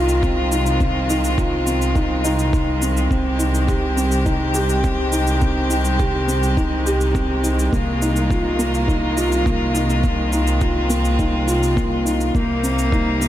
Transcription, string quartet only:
Already playing: D#3 G#3 C4 F4
3.11 C4 G4
7.73 D#3 A#3 F4
10.05 C4
12.35 C3 G3 A#3 D#4

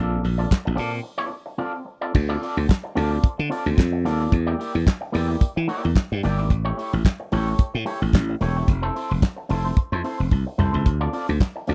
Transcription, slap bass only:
Already playing: A#1
0.24 A#1
0.67 A#1
0.79 A#2
2.15 D2
2.57 D2
2.97 D2
3.39 D3
3.66 D2
3.78 F2
4.06 D#2
4.33 E2
4.75 E2
5.15 E2
5.42 muted slap bass stroke
5.57 E3
5.85 E2
6.12 G2
6.25 G1
6.39 G#1
6.51 A1
6.93 A1
7.33 A1
7.75 A2
8.02 A1
8.14 A1
8.41 E1
8.68 F1
9.11 F1
9.50 F1
9.92 F2
10.20 F1
10.32 C2
10.59 C2
10.74 C#2
10.86 D2
11.29 D2
11.69 D2

